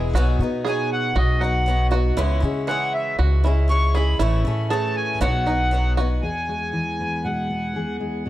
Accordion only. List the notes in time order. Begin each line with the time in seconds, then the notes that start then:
0.68 G#5
0.93 F#5
1.17 D#5
1.40 F#5
2.67 F#5
2.94 E5
3.70 C#6
3.95 B5
4.70 A5
4.97 G#5
5.22 F#5
6.23 G#5
7.24 F#5